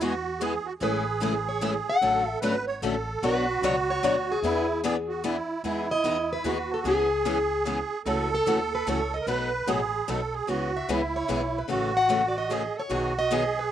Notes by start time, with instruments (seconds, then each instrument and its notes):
Already playing: upright bass E2
0.01 steel-string acoustic guitar E3 G#3 B3 E4 G#4, accordion F#4
0.40 steel-string acoustic guitar E3 G#3 B3 E4 G#4, accordion G#4
0.66 accordion F#4
0.80 upright bass A1, steel-string acoustic guitar C#3 E3 G#3 A3 C#4 E4 G#4 A4 B4, accordion G#4
1.20 steel-string acoustic guitar C#3 E3 G#3 A3 C#4 E4 G#4 A4
1.49 steel-string acoustic guitar C#5
1.61 steel-string acoustic guitar C#3 E3 G#3 A3 C#4 E4 G#4 A4 E5
1.90 steel-string acoustic guitar F#5
2.01 upright bass A1, steel-string acoustic guitar D3 F#3 A3 C#4 F#4 A4, accordion A4
2.29 steel-string acoustic guitar E5
2.41 upright bass G#1, steel-string acoustic guitar D3 F#3 A3 C#4 F#4 A4, accordion B4
2.67 accordion C#5
2.82 upright bass A1, steel-string acoustic guitar D3 F#3 A3 C#4 F#4 A4, accordion A4
3.23 upright bass B1, steel-string acoustic guitar B2 F#3 B3 D4 F#4 B4 C#5, accordion F#4
3.62 upright bass C#2, steel-string acoustic guitar B2 F#3 B3 D4 F#4 C#5
3.90 steel-string acoustic guitar C#5
4.03 upright bass D2, steel-string acoustic guitar B2 F#3 B3 D4 F#4 C#5
4.32 steel-string acoustic guitar G#4
4.42 upright bass E2, steel-string acoustic guitar E3 B3 D4 G#4 B4, accordion E4
4.84 steel-string acoustic guitar E3 B3 D4 G#4 B4, accordion G#4
5.09 accordion F#4
5.24 steel-string acoustic guitar E3 B3 D4 G#4 B4, accordion E4
5.64 upright bass E2, steel-string acoustic guitar E3 G#3 B3 D#4 G#4, accordion E4
5.91 steel-string acoustic guitar D#5
6.04 upright bass E2, steel-string acoustic guitar E3 G#3 B3 D#4 G#4
6.33 steel-string acoustic guitar B4
6.44 upright bass D#2, steel-string acoustic guitar E3 G#3 B3 D#4 G#4, accordion F#4
6.74 steel-string acoustic guitar A4
6.84 upright bass C#2, steel-string acoustic guitar C#3 E3 G#3 B3 C#4 E4 G#4, accordion G#4
7.25 steel-string acoustic guitar C#3 E3 G#3 B3 C#4 E4 G#4
7.66 steel-string acoustic guitar C#3 E3 G#3 B3 C#4 E4 G#4
8.06 upright bass C#2, steel-string acoustic guitar C#3 E3 A3 C#4 E4 F#4 C#5, accordion A4
8.35 steel-string acoustic guitar A4
8.46 upright bass D#2, steel-string acoustic guitar C#3 E3 A3 C#4 E4 F#4 C#5
8.75 steel-string acoustic guitar B4
8.87 upright bass C#2, steel-string acoustic guitar C#3 E3 A3 C#4 E4 F#4 C#5
9.14 steel-string acoustic guitar D#5
9.21 accordion A#4
9.27 upright bass B1, steel-string acoustic guitar B2 F#3 A3 D#4 F#4 B4, accordion B4
9.67 upright bass A1, steel-string acoustic guitar B2 F#3 A3 D#4 F#4 B4, accordion G#4
10.08 upright bass B1, steel-string acoustic guitar B2 F#3 A3 D#4 F#4 B4, accordion A4
10.34 accordion G#4
10.48 upright bass C#2, steel-string acoustic guitar C#3 E3 G#3 B3 C#4 E4 G#4, accordion F#4
10.77 steel-string acoustic guitar E5
10.88 upright bass C#2, steel-string acoustic guitar C#3 E3 G#3 B3 C#4 E4 G#4, accordion E4
11.16 steel-string acoustic guitar C#5
11.29 upright bass B1, steel-string acoustic guitar C#3 E3 G#3 B3 C#4 E4 G#4
11.58 steel-string acoustic guitar B4
11.68 upright bass A1, steel-string acoustic guitar C#3 E3 A3 C#4 F#4 A4, accordion F#4
11.97 steel-string acoustic guitar F#5
12.09 steel-string acoustic guitar C#3 E3 A3 C#4 F#4 A4
12.28 steel-string acoustic guitar D5
12.38 steel-string acoustic guitar D#5
12.50 steel-string acoustic guitar C#3 E3 A3 C#4 F#4 A4, accordion G#4
12.76 accordion A4, steel-string acoustic guitar C#5
12.89 upright bass B1, steel-string acoustic guitar B2 D#3 F#3 B3 D#4 G#4, accordion F#4
13.19 steel-string acoustic guitar D#5
13.30 steel-string acoustic guitar B2 D#3 F#3 B3 D#4 G#4, accordion G#4
13.59 steel-string acoustic guitar B4